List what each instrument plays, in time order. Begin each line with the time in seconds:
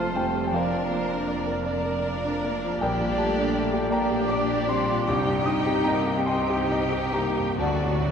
Already playing: double bass section F1, grand piano F2 C3 A3 A4 C5 F5 A5 A#5 C6, cello section F2, french horn section A3, viola section F4, violin section A4 C5
0.00 grand piano F4
0.13 french horn section G3, grand piano A3 G5
0.35 grand piano C3
0.47 french horn section F3, grand piano G5
0.52 grand piano F2 A#4 D5 F5, viola section D4, violin section A#4 D5
0.71 grand piano F3
0.90 grand piano A#3, violin section C5
1.09 grand piano D4
1.26 violin section D5, grand piano D5
1.47 grand piano A#4
1.65 viola section D4, violin section A#4 D5, grand piano D5
1.85 grand piano A#4
2.03 grand piano D5
2.24 grand piano D4
2.44 grand piano A#3
2.63 grand piano F3
2.80 double bass section A#1, grand piano A#1 A#4 D5 G5, cello section A#2, french horn section G3, viola section D4, violin section G4 D5
3.00 grand piano A#2
3.18 grand piano G3 A5, french horn section A3
3.36 grand piano D4
3.54 grand piano D5
3.74 grand piano G4
3.90 french horn section A#3, viola section D4, violin section G4 D5, grand piano D5 G5 A#5
4.11 grand piano G4
4.28 french horn section D4, grand piano D5 D6
4.49 grand piano D4
4.68 grand piano G3 C6, french horn section C4
4.90 grand piano A#2
5.07 double bass section C2, grand piano C2 D6, cello section C3, french horn section D4, viola section D#4, violin section G4 G5
5.27 grand piano G2
5.46 grand piano G3 D#6, french horn section D#4
5.67 grand piano G4
5.84 french horn section A#3, grand piano D#5 A#5
6.07 grand piano G4
6.26 french horn section C4, viola section D#4, violin section G4 G5, grand piano D#5 G5 C6
6.50 grand piano G4
6.72 grand piano D#5
6.92 grand piano G4
7.13 grand piano G3 A#5, french horn section A#3
7.37 grand piano G2
7.58 double bass section D2, grand piano D2 D5 F#5 A5, timpani D3, cello section D3, french horn section A3, viola section D4, violin section F#4 D5
7.67 timpani D3
7.75 timpani D3
7.83 grand piano A2, timpani D3
7.93 timpani D3
8.06 grand piano F#3